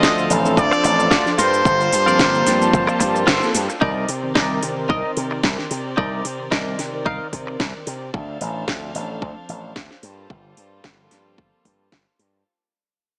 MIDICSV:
0, 0, Header, 1, 8, 480
1, 0, Start_track
1, 0, Tempo, 540541
1, 1467, Time_signature, 4, 2, 24, 8
1, 11707, End_track
2, 0, Start_track
2, 0, Title_t, "Trumpet section"
2, 0, Program_c, 0, 61
2, 0, Note_on_c, 0, 75, 110
2, 267, Note_off_c, 0, 75, 0
2, 508, Note_on_c, 0, 74, 121
2, 1135, Note_off_c, 0, 74, 0
2, 1168, Note_on_c, 0, 74, 77
2, 1226, Note_off_c, 0, 74, 0
2, 1227, Note_on_c, 0, 72, 116
2, 2907, Note_off_c, 0, 72, 0
2, 11707, End_track
3, 0, Start_track
3, 0, Title_t, "Clean electric guitar"
3, 0, Program_c, 1, 27
3, 0, Note_on_c, 1, 65, 95
3, 0, Note_on_c, 1, 69, 87
3, 0, Note_on_c, 1, 72, 74
3, 0, Note_on_c, 1, 74, 103
3, 265, Note_off_c, 1, 65, 0
3, 267, Note_off_c, 1, 69, 0
3, 269, Note_off_c, 1, 72, 0
3, 270, Note_off_c, 1, 74, 0
3, 983, Note_on_c, 1, 65, 95
3, 987, Note_on_c, 1, 69, 82
3, 993, Note_on_c, 1, 72, 77
3, 994, Note_on_c, 1, 74, 103
3, 1170, Note_off_c, 1, 65, 0
3, 1172, Note_off_c, 1, 69, 0
3, 1174, Note_off_c, 1, 72, 0
3, 1176, Note_off_c, 1, 74, 0
3, 1223, Note_on_c, 1, 65, 98
3, 1226, Note_on_c, 1, 69, 92
3, 1233, Note_on_c, 1, 70, 80
3, 1234, Note_on_c, 1, 72, 113
3, 1705, Note_off_c, 1, 65, 0
3, 1707, Note_off_c, 1, 69, 0
3, 1709, Note_off_c, 1, 70, 0
3, 1710, Note_off_c, 1, 72, 0
3, 1831, Note_on_c, 1, 65, 88
3, 1838, Note_on_c, 1, 69, 76
3, 1839, Note_on_c, 1, 70, 86
3, 1846, Note_on_c, 1, 74, 92
3, 2185, Note_off_c, 1, 65, 0
3, 2186, Note_off_c, 1, 69, 0
3, 2188, Note_off_c, 1, 70, 0
3, 2190, Note_off_c, 1, 74, 0
3, 2902, Note_on_c, 1, 65, 96
3, 2905, Note_on_c, 1, 69, 89
3, 2912, Note_on_c, 1, 70, 80
3, 2912, Note_on_c, 1, 72, 107
3, 3089, Note_off_c, 1, 65, 0
3, 3091, Note_off_c, 1, 69, 0
3, 3093, Note_off_c, 1, 70, 0
3, 3094, Note_off_c, 1, 72, 0
3, 3384, Note_on_c, 1, 63, 111
3, 3389, Note_on_c, 1, 70, 102
3, 3394, Note_on_c, 1, 74, 121
3, 3626, Note_off_c, 1, 63, 0
3, 3628, Note_off_c, 1, 70, 0
3, 3630, Note_off_c, 1, 74, 0
3, 3865, Note_on_c, 1, 63, 88
3, 3870, Note_on_c, 1, 70, 82
3, 3876, Note_on_c, 1, 74, 96
3, 4106, Note_off_c, 1, 63, 0
3, 4108, Note_off_c, 1, 70, 0
3, 4111, Note_off_c, 1, 74, 0
3, 4343, Note_on_c, 1, 63, 92
3, 4350, Note_on_c, 1, 70, 83
3, 4354, Note_on_c, 1, 75, 102
3, 4530, Note_off_c, 1, 63, 0
3, 4533, Note_off_c, 1, 70, 0
3, 4535, Note_off_c, 1, 75, 0
3, 5303, Note_on_c, 1, 63, 110
3, 5308, Note_on_c, 1, 70, 100
3, 5314, Note_on_c, 1, 74, 123
3, 5545, Note_off_c, 1, 63, 0
3, 5548, Note_off_c, 1, 70, 0
3, 5550, Note_off_c, 1, 74, 0
3, 5784, Note_on_c, 1, 63, 88
3, 5788, Note_on_c, 1, 70, 82
3, 5794, Note_on_c, 1, 74, 97
3, 6025, Note_off_c, 1, 63, 0
3, 6028, Note_off_c, 1, 70, 0
3, 6030, Note_off_c, 1, 74, 0
3, 6265, Note_on_c, 1, 63, 92
3, 6270, Note_on_c, 1, 70, 82
3, 6275, Note_on_c, 1, 77, 96
3, 6451, Note_off_c, 1, 63, 0
3, 6453, Note_off_c, 1, 70, 0
3, 6456, Note_off_c, 1, 77, 0
3, 11707, End_track
4, 0, Start_track
4, 0, Title_t, "Violin section"
4, 0, Program_c, 2, 48
4, 0, Note_on_c, 2, 60, 77
4, 0, Note_on_c, 2, 72, 73
4, 0, Note_on_c, 2, 77, 86
4, 0, Note_on_c, 2, 81, 70
4, 1208, Note_off_c, 2, 60, 0
4, 1209, Note_off_c, 2, 77, 0
4, 1226, Note_on_c, 2, 65, 73
4, 1227, Note_on_c, 2, 55, 83
4, 1227, Note_on_c, 2, 58, 71
4, 3350, Note_off_c, 2, 72, 0
4, 3351, Note_off_c, 2, 81, 0
4, 3365, Note_off_c, 2, 55, 0
4, 3365, Note_off_c, 2, 58, 0
4, 3365, Note_off_c, 2, 65, 0
4, 3387, Note_on_c, 2, 70, 68
4, 3389, Note_on_c, 2, 60, 72
4, 3389, Note_on_c, 2, 74, 66
4, 7192, Note_off_c, 2, 60, 0
4, 7192, Note_off_c, 2, 70, 0
4, 7192, Note_off_c, 2, 74, 0
4, 7224, Note_on_c, 2, 62, 69
4, 7224, Note_on_c, 2, 77, 76
4, 7225, Note_on_c, 2, 69, 62
4, 7225, Note_on_c, 2, 72, 64
4, 8889, Note_off_c, 2, 62, 0
4, 8889, Note_off_c, 2, 69, 0
4, 8889, Note_off_c, 2, 77, 0
4, 8905, Note_on_c, 2, 65, 64
4, 8906, Note_on_c, 2, 69, 65
4, 8907, Note_on_c, 2, 58, 63
4, 8908, Note_on_c, 2, 55, 70
4, 11030, Note_off_c, 2, 72, 0
4, 11044, Note_off_c, 2, 65, 0
4, 11045, Note_off_c, 2, 58, 0
4, 11045, Note_off_c, 2, 69, 0
4, 11046, Note_off_c, 2, 55, 0
4, 11707, End_track
5, 0, Start_track
5, 0, Title_t, "Analog polysynth"
5, 0, Program_c, 3, 90
5, 0, Note_on_c, 3, 50, 71
5, 0, Note_on_c, 3, 53, 79
5, 0, Note_on_c, 3, 60, 73
5, 0, Note_on_c, 3, 69, 86
5, 364, Note_off_c, 3, 53, 0
5, 365, Note_off_c, 3, 60, 0
5, 366, Note_off_c, 3, 50, 0
5, 368, Note_off_c, 3, 69, 0
5, 389, Note_on_c, 3, 53, 92
5, 393, Note_on_c, 3, 60, 83
5, 401, Note_on_c, 3, 62, 80
5, 406, Note_on_c, 3, 69, 99
5, 957, Note_off_c, 3, 53, 0
5, 959, Note_off_c, 3, 60, 0
5, 963, Note_off_c, 3, 62, 0
5, 965, Note_off_c, 3, 69, 0
5, 1111, Note_on_c, 3, 53, 94
5, 1115, Note_on_c, 3, 60, 86
5, 1117, Note_on_c, 3, 62, 85
5, 1120, Note_on_c, 3, 69, 98
5, 1185, Note_off_c, 3, 53, 0
5, 1186, Note_off_c, 3, 60, 0
5, 1188, Note_off_c, 3, 62, 0
5, 1189, Note_off_c, 3, 69, 0
5, 1833, Note_on_c, 3, 53, 77
5, 1836, Note_on_c, 3, 58, 70
5, 1838, Note_on_c, 3, 60, 71
5, 1843, Note_on_c, 3, 81, 85
5, 2284, Note_off_c, 3, 53, 0
5, 2285, Note_off_c, 3, 58, 0
5, 2286, Note_off_c, 3, 60, 0
5, 2289, Note_off_c, 3, 81, 0
5, 2310, Note_on_c, 3, 53, 86
5, 2316, Note_on_c, 3, 58, 81
5, 2321, Note_on_c, 3, 60, 83
5, 2326, Note_on_c, 3, 81, 99
5, 2877, Note_off_c, 3, 53, 0
5, 2880, Note_off_c, 3, 58, 0
5, 2883, Note_off_c, 3, 60, 0
5, 2885, Note_off_c, 3, 81, 0
5, 3031, Note_on_c, 3, 53, 93
5, 3035, Note_on_c, 3, 58, 85
5, 3037, Note_on_c, 3, 60, 88
5, 3041, Note_on_c, 3, 69, 102
5, 3105, Note_off_c, 3, 53, 0
5, 3106, Note_off_c, 3, 58, 0
5, 3107, Note_off_c, 3, 60, 0
5, 3110, Note_off_c, 3, 69, 0
5, 3754, Note_on_c, 3, 51, 77
5, 3757, Note_on_c, 3, 60, 68
5, 3760, Note_on_c, 3, 74, 69
5, 3763, Note_on_c, 3, 70, 83
5, 4204, Note_off_c, 3, 51, 0
5, 4206, Note_off_c, 3, 60, 0
5, 4207, Note_off_c, 3, 74, 0
5, 4209, Note_off_c, 3, 70, 0
5, 4231, Note_on_c, 3, 51, 86
5, 4235, Note_on_c, 3, 60, 83
5, 4247, Note_on_c, 3, 70, 94
5, 4797, Note_off_c, 3, 51, 0
5, 4800, Note_off_c, 3, 60, 0
5, 4806, Note_off_c, 3, 70, 0
5, 4951, Note_on_c, 3, 51, 89
5, 4955, Note_on_c, 3, 60, 80
5, 4958, Note_on_c, 3, 62, 81
5, 4962, Note_on_c, 3, 70, 95
5, 5025, Note_off_c, 3, 51, 0
5, 5027, Note_off_c, 3, 60, 0
5, 5028, Note_off_c, 3, 62, 0
5, 5030, Note_off_c, 3, 70, 0
5, 5672, Note_on_c, 3, 51, 73
5, 5676, Note_on_c, 3, 60, 67
5, 5679, Note_on_c, 3, 74, 68
5, 5683, Note_on_c, 3, 70, 82
5, 6123, Note_off_c, 3, 51, 0
5, 6125, Note_off_c, 3, 60, 0
5, 6127, Note_off_c, 3, 74, 0
5, 6129, Note_off_c, 3, 70, 0
5, 6149, Note_on_c, 3, 51, 85
5, 6155, Note_on_c, 3, 60, 79
5, 6161, Note_on_c, 3, 74, 79
5, 6167, Note_on_c, 3, 70, 95
5, 6716, Note_off_c, 3, 51, 0
5, 6719, Note_off_c, 3, 60, 0
5, 6722, Note_off_c, 3, 74, 0
5, 6725, Note_off_c, 3, 70, 0
5, 6873, Note_on_c, 3, 51, 84
5, 6875, Note_on_c, 3, 60, 83
5, 6879, Note_on_c, 3, 62, 78
5, 6882, Note_on_c, 3, 70, 94
5, 6945, Note_off_c, 3, 51, 0
5, 6946, Note_off_c, 3, 60, 0
5, 6949, Note_off_c, 3, 62, 0
5, 6950, Note_off_c, 3, 70, 0
5, 7595, Note_on_c, 3, 53, 71
5, 7599, Note_on_c, 3, 60, 65
5, 7601, Note_on_c, 3, 62, 67
5, 7605, Note_on_c, 3, 69, 83
5, 8045, Note_off_c, 3, 53, 0
5, 8047, Note_off_c, 3, 60, 0
5, 8048, Note_off_c, 3, 62, 0
5, 8050, Note_off_c, 3, 69, 0
5, 8070, Note_on_c, 3, 53, 83
5, 8076, Note_on_c, 3, 60, 75
5, 8082, Note_on_c, 3, 62, 79
5, 8086, Note_on_c, 3, 69, 94
5, 8637, Note_off_c, 3, 53, 0
5, 8640, Note_off_c, 3, 60, 0
5, 8643, Note_off_c, 3, 62, 0
5, 8645, Note_off_c, 3, 69, 0
5, 8793, Note_on_c, 3, 53, 85
5, 8796, Note_on_c, 3, 60, 79
5, 8799, Note_on_c, 3, 62, 77
5, 8802, Note_on_c, 3, 69, 93
5, 8865, Note_off_c, 3, 53, 0
5, 8867, Note_off_c, 3, 60, 0
5, 8869, Note_off_c, 3, 62, 0
5, 8870, Note_off_c, 3, 69, 0
5, 9513, Note_on_c, 3, 53, 72
5, 9516, Note_on_c, 3, 58, 64
5, 9519, Note_on_c, 3, 60, 67
5, 9522, Note_on_c, 3, 69, 81
5, 9964, Note_off_c, 3, 53, 0
5, 9965, Note_off_c, 3, 58, 0
5, 9967, Note_off_c, 3, 60, 0
5, 9968, Note_off_c, 3, 69, 0
5, 9990, Note_on_c, 3, 53, 80
5, 9994, Note_on_c, 3, 58, 76
5, 10000, Note_on_c, 3, 60, 77
5, 10008, Note_on_c, 3, 69, 94
5, 10557, Note_off_c, 3, 53, 0
5, 10559, Note_off_c, 3, 58, 0
5, 10562, Note_off_c, 3, 60, 0
5, 10566, Note_off_c, 3, 69, 0
5, 11707, End_track
6, 0, Start_track
6, 0, Title_t, "Slap bass"
6, 0, Program_c, 4, 36
6, 27, Note_on_c, 4, 38, 89
6, 231, Note_off_c, 4, 38, 0
6, 269, Note_on_c, 4, 33, 91
6, 508, Note_off_c, 4, 33, 0
6, 508, Note_on_c, 4, 38, 100
6, 616, Note_off_c, 4, 38, 0
6, 750, Note_on_c, 4, 33, 101
6, 952, Note_off_c, 4, 33, 0
6, 988, Note_on_c, 4, 38, 88
6, 1096, Note_off_c, 4, 38, 0
6, 1230, Note_on_c, 4, 43, 89
6, 1432, Note_off_c, 4, 43, 0
6, 1467, Note_on_c, 4, 31, 103
6, 1671, Note_off_c, 4, 31, 0
6, 1709, Note_on_c, 4, 43, 92
6, 1912, Note_off_c, 4, 43, 0
6, 1948, Note_on_c, 4, 31, 89
6, 2151, Note_off_c, 4, 31, 0
6, 2190, Note_on_c, 4, 43, 91
6, 2392, Note_off_c, 4, 43, 0
6, 2428, Note_on_c, 4, 31, 87
6, 2536, Note_off_c, 4, 31, 0
6, 2668, Note_on_c, 4, 43, 89
6, 2871, Note_off_c, 4, 43, 0
6, 2909, Note_on_c, 4, 31, 106
6, 3017, Note_off_c, 4, 31, 0
6, 3150, Note_on_c, 4, 43, 91
6, 3257, Note_off_c, 4, 43, 0
6, 3389, Note_on_c, 4, 36, 98
6, 3592, Note_off_c, 4, 36, 0
6, 3628, Note_on_c, 4, 48, 83
6, 3831, Note_off_c, 4, 48, 0
6, 3869, Note_on_c, 4, 36, 82
6, 4072, Note_off_c, 4, 36, 0
6, 4109, Note_on_c, 4, 48, 85
6, 4349, Note_on_c, 4, 36, 95
6, 4362, Note_off_c, 4, 48, 0
6, 4456, Note_off_c, 4, 36, 0
6, 4591, Note_on_c, 4, 48, 91
6, 4793, Note_off_c, 4, 48, 0
6, 4829, Note_on_c, 4, 36, 85
6, 4937, Note_off_c, 4, 36, 0
6, 5069, Note_on_c, 4, 48, 82
6, 5272, Note_off_c, 4, 48, 0
6, 5309, Note_on_c, 4, 36, 95
6, 5512, Note_off_c, 4, 36, 0
6, 5549, Note_on_c, 4, 48, 83
6, 5752, Note_off_c, 4, 48, 0
6, 5789, Note_on_c, 4, 36, 81
6, 5992, Note_off_c, 4, 36, 0
6, 6030, Note_on_c, 4, 48, 87
6, 6268, Note_on_c, 4, 36, 94
6, 6281, Note_off_c, 4, 48, 0
6, 6376, Note_off_c, 4, 36, 0
6, 6508, Note_on_c, 4, 48, 93
6, 6711, Note_off_c, 4, 48, 0
6, 6747, Note_on_c, 4, 36, 81
6, 6856, Note_off_c, 4, 36, 0
6, 6988, Note_on_c, 4, 48, 78
6, 7191, Note_off_c, 4, 48, 0
6, 7228, Note_on_c, 4, 38, 95
6, 7431, Note_off_c, 4, 38, 0
6, 7468, Note_on_c, 4, 33, 84
6, 7671, Note_off_c, 4, 33, 0
6, 7707, Note_on_c, 4, 38, 82
6, 7911, Note_off_c, 4, 38, 0
6, 7949, Note_on_c, 4, 33, 84
6, 8188, Note_off_c, 4, 33, 0
6, 8188, Note_on_c, 4, 38, 89
6, 8296, Note_off_c, 4, 38, 0
6, 8428, Note_on_c, 4, 33, 95
6, 8631, Note_off_c, 4, 33, 0
6, 8667, Note_on_c, 4, 38, 77
6, 8775, Note_off_c, 4, 38, 0
6, 8907, Note_on_c, 4, 43, 79
6, 9111, Note_off_c, 4, 43, 0
6, 9147, Note_on_c, 4, 31, 89
6, 9351, Note_off_c, 4, 31, 0
6, 9388, Note_on_c, 4, 43, 78
6, 9591, Note_off_c, 4, 43, 0
6, 9627, Note_on_c, 4, 31, 78
6, 9831, Note_off_c, 4, 31, 0
6, 9866, Note_on_c, 4, 43, 80
6, 10107, Note_on_c, 4, 31, 87
6, 10120, Note_off_c, 4, 43, 0
6, 10216, Note_off_c, 4, 31, 0
6, 10347, Note_on_c, 4, 43, 88
6, 10551, Note_off_c, 4, 43, 0
6, 10588, Note_on_c, 4, 31, 78
6, 10696, Note_off_c, 4, 31, 0
6, 10827, Note_on_c, 4, 43, 76
6, 11031, Note_off_c, 4, 43, 0
6, 11707, End_track
7, 0, Start_track
7, 0, Title_t, "Muted clean electric guitar strokes"
7, 634, Note_on_c, 9, 29, 123
7, 723, Note_off_c, 9, 29, 0
7, 743, Note_on_c, 9, 29, 93
7, 832, Note_off_c, 9, 29, 0
7, 875, Note_on_c, 9, 29, 34
7, 964, Note_off_c, 9, 29, 0
7, 2552, Note_on_c, 9, 29, 123
7, 2641, Note_off_c, 9, 29, 0
7, 2662, Note_on_c, 9, 29, 96
7, 2751, Note_off_c, 9, 29, 0
7, 2793, Note_on_c, 9, 29, 35
7, 2882, Note_off_c, 9, 29, 0
7, 3275, Note_on_c, 9, 29, 37
7, 3364, Note_off_c, 9, 29, 0
7, 4715, Note_on_c, 9, 29, 85
7, 4804, Note_off_c, 9, 29, 0
7, 4825, Note_on_c, 9, 29, 33
7, 4914, Note_off_c, 9, 29, 0
7, 6635, Note_on_c, 9, 29, 82
7, 6724, Note_off_c, 9, 29, 0
7, 6746, Note_on_c, 9, 29, 33
7, 6834, Note_off_c, 9, 29, 0
7, 11707, End_track
8, 0, Start_track
8, 0, Title_t, "Drums"
8, 28, Note_on_c, 9, 36, 113
8, 28, Note_on_c, 9, 38, 123
8, 34, Note_on_c, 9, 82, 50
8, 117, Note_off_c, 9, 36, 0
8, 117, Note_off_c, 9, 38, 0
8, 123, Note_off_c, 9, 82, 0
8, 164, Note_on_c, 9, 82, 23
8, 253, Note_off_c, 9, 82, 0
8, 268, Note_on_c, 9, 46, 100
8, 274, Note_on_c, 9, 82, 82
8, 357, Note_off_c, 9, 46, 0
8, 362, Note_off_c, 9, 82, 0
8, 405, Note_on_c, 9, 82, 33
8, 494, Note_off_c, 9, 82, 0
8, 508, Note_on_c, 9, 36, 120
8, 515, Note_on_c, 9, 82, 46
8, 597, Note_off_c, 9, 36, 0
8, 603, Note_off_c, 9, 82, 0
8, 647, Note_on_c, 9, 82, 24
8, 735, Note_off_c, 9, 82, 0
8, 749, Note_on_c, 9, 46, 98
8, 755, Note_on_c, 9, 82, 78
8, 838, Note_off_c, 9, 46, 0
8, 843, Note_off_c, 9, 82, 0
8, 886, Note_on_c, 9, 82, 37
8, 975, Note_off_c, 9, 82, 0
8, 988, Note_on_c, 9, 36, 114
8, 989, Note_on_c, 9, 38, 120
8, 995, Note_on_c, 9, 82, 46
8, 1077, Note_off_c, 9, 36, 0
8, 1077, Note_off_c, 9, 38, 0
8, 1084, Note_off_c, 9, 82, 0
8, 1120, Note_on_c, 9, 38, 35
8, 1126, Note_on_c, 9, 82, 23
8, 1209, Note_off_c, 9, 38, 0
8, 1215, Note_off_c, 9, 82, 0
8, 1230, Note_on_c, 9, 46, 103
8, 1235, Note_on_c, 9, 82, 81
8, 1319, Note_off_c, 9, 46, 0
8, 1324, Note_off_c, 9, 82, 0
8, 1365, Note_on_c, 9, 82, 37
8, 1454, Note_off_c, 9, 82, 0
8, 1468, Note_on_c, 9, 36, 120
8, 1474, Note_on_c, 9, 82, 50
8, 1557, Note_off_c, 9, 36, 0
8, 1563, Note_off_c, 9, 82, 0
8, 1605, Note_on_c, 9, 82, 25
8, 1694, Note_off_c, 9, 82, 0
8, 1709, Note_on_c, 9, 46, 103
8, 1715, Note_on_c, 9, 82, 83
8, 1798, Note_off_c, 9, 46, 0
8, 1804, Note_off_c, 9, 82, 0
8, 1845, Note_on_c, 9, 82, 36
8, 1934, Note_off_c, 9, 82, 0
8, 1948, Note_on_c, 9, 36, 117
8, 1948, Note_on_c, 9, 38, 127
8, 1954, Note_on_c, 9, 82, 49
8, 2037, Note_off_c, 9, 36, 0
8, 2037, Note_off_c, 9, 38, 0
8, 2043, Note_off_c, 9, 82, 0
8, 2085, Note_on_c, 9, 82, 24
8, 2173, Note_off_c, 9, 82, 0
8, 2188, Note_on_c, 9, 38, 38
8, 2189, Note_on_c, 9, 46, 102
8, 2195, Note_on_c, 9, 82, 84
8, 2277, Note_off_c, 9, 38, 0
8, 2278, Note_off_c, 9, 46, 0
8, 2283, Note_off_c, 9, 82, 0
8, 2325, Note_on_c, 9, 82, 35
8, 2414, Note_off_c, 9, 82, 0
8, 2428, Note_on_c, 9, 36, 125
8, 2435, Note_on_c, 9, 82, 49
8, 2517, Note_off_c, 9, 36, 0
8, 2523, Note_off_c, 9, 82, 0
8, 2564, Note_on_c, 9, 82, 24
8, 2653, Note_off_c, 9, 82, 0
8, 2667, Note_on_c, 9, 46, 100
8, 2668, Note_on_c, 9, 36, 58
8, 2673, Note_on_c, 9, 82, 79
8, 2756, Note_off_c, 9, 46, 0
8, 2757, Note_off_c, 9, 36, 0
8, 2762, Note_off_c, 9, 82, 0
8, 2804, Note_on_c, 9, 82, 36
8, 2893, Note_off_c, 9, 82, 0
8, 2908, Note_on_c, 9, 38, 122
8, 2909, Note_on_c, 9, 36, 114
8, 2915, Note_on_c, 9, 82, 47
8, 2997, Note_off_c, 9, 36, 0
8, 2997, Note_off_c, 9, 38, 0
8, 3003, Note_off_c, 9, 82, 0
8, 3044, Note_on_c, 9, 82, 24
8, 3133, Note_off_c, 9, 82, 0
8, 3148, Note_on_c, 9, 46, 110
8, 3153, Note_on_c, 9, 82, 83
8, 3237, Note_off_c, 9, 46, 0
8, 3242, Note_off_c, 9, 82, 0
8, 3283, Note_on_c, 9, 82, 36
8, 3372, Note_off_c, 9, 82, 0
8, 3389, Note_on_c, 9, 36, 121
8, 3478, Note_off_c, 9, 36, 0
8, 3627, Note_on_c, 9, 46, 103
8, 3716, Note_off_c, 9, 46, 0
8, 3867, Note_on_c, 9, 38, 125
8, 3869, Note_on_c, 9, 36, 114
8, 3956, Note_off_c, 9, 38, 0
8, 3958, Note_off_c, 9, 36, 0
8, 4108, Note_on_c, 9, 46, 102
8, 4197, Note_off_c, 9, 46, 0
8, 4349, Note_on_c, 9, 36, 118
8, 4438, Note_off_c, 9, 36, 0
8, 4588, Note_on_c, 9, 46, 100
8, 4677, Note_off_c, 9, 46, 0
8, 4826, Note_on_c, 9, 38, 118
8, 4828, Note_on_c, 9, 36, 107
8, 4915, Note_off_c, 9, 38, 0
8, 4917, Note_off_c, 9, 36, 0
8, 4958, Note_on_c, 9, 38, 37
8, 5046, Note_off_c, 9, 38, 0
8, 5069, Note_on_c, 9, 46, 105
8, 5157, Note_off_c, 9, 46, 0
8, 5308, Note_on_c, 9, 36, 114
8, 5397, Note_off_c, 9, 36, 0
8, 5549, Note_on_c, 9, 46, 104
8, 5638, Note_off_c, 9, 46, 0
8, 5788, Note_on_c, 9, 36, 114
8, 5788, Note_on_c, 9, 38, 124
8, 5877, Note_off_c, 9, 36, 0
8, 5877, Note_off_c, 9, 38, 0
8, 6028, Note_on_c, 9, 38, 36
8, 6028, Note_on_c, 9, 46, 102
8, 6116, Note_off_c, 9, 38, 0
8, 6117, Note_off_c, 9, 46, 0
8, 6268, Note_on_c, 9, 36, 121
8, 6357, Note_off_c, 9, 36, 0
8, 6508, Note_on_c, 9, 36, 59
8, 6508, Note_on_c, 9, 46, 100
8, 6597, Note_off_c, 9, 36, 0
8, 6597, Note_off_c, 9, 46, 0
8, 6748, Note_on_c, 9, 36, 111
8, 6748, Note_on_c, 9, 38, 112
8, 6836, Note_off_c, 9, 38, 0
8, 6837, Note_off_c, 9, 36, 0
8, 6987, Note_on_c, 9, 46, 105
8, 7076, Note_off_c, 9, 46, 0
8, 7228, Note_on_c, 9, 36, 120
8, 7316, Note_off_c, 9, 36, 0
8, 7467, Note_on_c, 9, 46, 100
8, 7556, Note_off_c, 9, 46, 0
8, 7706, Note_on_c, 9, 38, 117
8, 7708, Note_on_c, 9, 36, 116
8, 7795, Note_off_c, 9, 38, 0
8, 7796, Note_off_c, 9, 36, 0
8, 7947, Note_on_c, 9, 46, 100
8, 8036, Note_off_c, 9, 46, 0
8, 8188, Note_on_c, 9, 36, 119
8, 8276, Note_off_c, 9, 36, 0
8, 8426, Note_on_c, 9, 46, 99
8, 8515, Note_off_c, 9, 46, 0
8, 8665, Note_on_c, 9, 38, 109
8, 8667, Note_on_c, 9, 36, 113
8, 8754, Note_off_c, 9, 38, 0
8, 8756, Note_off_c, 9, 36, 0
8, 8796, Note_on_c, 9, 38, 35
8, 8885, Note_off_c, 9, 38, 0
8, 8906, Note_on_c, 9, 46, 101
8, 8995, Note_off_c, 9, 46, 0
8, 9147, Note_on_c, 9, 36, 115
8, 9236, Note_off_c, 9, 36, 0
8, 9387, Note_on_c, 9, 46, 95
8, 9476, Note_off_c, 9, 46, 0
8, 9625, Note_on_c, 9, 38, 112
8, 9627, Note_on_c, 9, 36, 107
8, 9714, Note_off_c, 9, 38, 0
8, 9716, Note_off_c, 9, 36, 0
8, 9866, Note_on_c, 9, 38, 33
8, 9867, Note_on_c, 9, 46, 98
8, 9955, Note_off_c, 9, 38, 0
8, 9956, Note_off_c, 9, 46, 0
8, 10107, Note_on_c, 9, 36, 115
8, 10196, Note_off_c, 9, 36, 0
8, 10348, Note_on_c, 9, 36, 58
8, 10348, Note_on_c, 9, 46, 97
8, 10436, Note_off_c, 9, 36, 0
8, 10437, Note_off_c, 9, 46, 0
8, 10587, Note_on_c, 9, 36, 110
8, 10587, Note_on_c, 9, 38, 105
8, 10676, Note_off_c, 9, 36, 0
8, 10676, Note_off_c, 9, 38, 0
8, 10829, Note_on_c, 9, 46, 99
8, 10918, Note_off_c, 9, 46, 0
8, 11707, End_track
0, 0, End_of_file